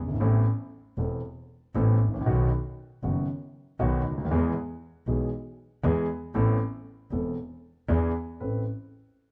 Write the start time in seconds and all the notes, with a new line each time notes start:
Already playing: G1
0.02 F#1
0.08 G1
0.14 G#1
0.20 A1 A2 E3 B3 C4 A4
0.98 E1 E2 E3 B3 C4 A4
1.75 A1 A2 E3 B3 C4 A4
2.01 A1
2.07 G#1
2.13 A1
2.21 A#1
2.26 B1 B2 D#3 F#3 B3 F#4
3.03 F#1 F#2 D#3 F#3 B3 F#4
3.79 B1 B2 D#3 F#3 B3 F#4
4.05 D2
4.12 C#2
4.18 D2
4.25 D#2
4.30 E2 E3 G#3 B3 G#4
5.07 B1 B2 E3 G#3 B3 G#4
5.83 E2 E3 G#3 B3 G#4
6.34 A1 A2 E3 B3 C4 A4
7.12 E1 E2 E3 B3 C4 A4
7.88 E2 E3 B3 D4 G#4
8.40 A1 C4 A4 B4